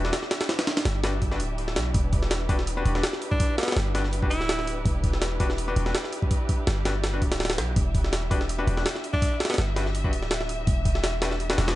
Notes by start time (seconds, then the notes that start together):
Already playing: E1 D4 E4 G4 E5
0.04 D4 F#4 G4 B4, snare
0.13 snare, open hi-hat
0.23 snare
0.31 snare, open hi-hat
0.41 snare, open hi-hat
0.49 snare, open hi-hat
0.59 snare, open hi-hat
0.67 snare, open hi-hat
0.77 snare, open hi-hat
0.85 G1, snare, open hi-hat
1.04 D4 F#4 G4 B4, snare, open hi-hat
1.22 kick, open hi-hat
1.31 D4 F#4 G4 B4, snare
1.40 D1, open hi-hat
1.58 open hi-hat
1.68 snare
1.76 B1, snare, open hi-hat
1.94 E1 B4, kick, open hi-hat
2.13 kick, open hi-hat
2.23 snare
2.31 snare, open hi-hat
2.49 D4 F#4 G4 B4, kick, open hi-hat
2.59 snare
2.67 open hi-hat
2.77 D4 F#4 G4 B4
2.85 E1 D4 F#4 G4 B4, open hi-hat
2.95 D4 F#4 G4 B4, snare
3.03 snare, open hi-hat
3.13 snare
3.22 open hi-hat
3.31 D4, kick
3.40 kick, open hi-hat
3.58 B3, snare, open hi-hat
3.63 snare, open hi-hat
3.68 snare, open hi-hat
3.72 snare, open hi-hat
3.76 G1, snare, open hi-hat
3.95 D4 F#4 G4 B4, snare, open hi-hat
4.04 snare
4.13 open hi-hat
4.22 D4 F#4 G4 B4, kick
4.30 D1 E4, open hi-hat
4.41 snare
4.49 snare, open hi-hat
4.59 snare
4.67 open hi-hat
4.86 E1, kick, open hi-hat
5.04 kick, open hi-hat
5.13 snare
5.22 snare, open hi-hat
5.40 D4 F#4 G4 B4, kick, open hi-hat
5.50 snare
5.58 open hi-hat
5.68 D4 F#4 G4 B4
5.76 E1 D4 F#4 G4 B4, open hi-hat
5.86 D4 F#4 G4 B4, snare
5.95 snare, open hi-hat
6.04 snare
6.13 open hi-hat
6.22 kick
6.31 kick, open hi-hat
6.49 kick, open hi-hat
6.67 G1, snare, open hi-hat
6.85 D4 F#4 G4 B4, snare, open hi-hat
7.04 snare, open hi-hat
7.13 D4 F#4 G4 B4
7.22 D1, kick, open hi-hat
7.32 snare, open hi-hat
7.40 snare, open hi-hat
7.45 snare, open hi-hat
7.50 snare, open hi-hat
7.58 B1, snare, open hi-hat
7.76 E1 E5, kick, open hi-hat
7.95 kick, open hi-hat
8.04 snare
8.13 snare, open hi-hat
8.31 D4 F#4 G4 B4, kick, open hi-hat
8.41 snare
8.49 open hi-hat
8.59 D4 F#4 G4 B4
8.67 E1 F#4 G4 B4, open hi-hat
8.77 D4 F#4 G4 B4, snare
8.86 snare, open hi-hat
8.96 snare
9.04 open hi-hat
9.13 D4, kick
9.22 kick, open hi-hat
9.40 snare, open hi-hat
9.45 snare, open hi-hat
9.50 B3, snare, open hi-hat
9.54 B3, snare, open hi-hat
9.58 G1, snare, open hi-hat
9.76 D4 F#4 G4 B4, snare, open hi-hat
9.86 snare
9.95 open hi-hat
10.04 D4 F#4 G4 B4, kick
10.13 D1, open hi-hat
10.23 snare
10.31 snare, open hi-hat
10.41 snare
10.49 open hi-hat
10.67 E1, kick, open hi-hat
10.85 kick, open hi-hat
10.95 snare
11.04 snare, open hi-hat
11.22 D4 F#4 G4 B4, snare, open hi-hat
11.31 snare
11.40 open hi-hat
11.50 D4 F#4 G4 B4, snare, open hi-hat
11.58 E1 D4 F#4 G4 B4, snare, open hi-hat
11.68 D4 F#4 G4 B4, snare, open hi-hat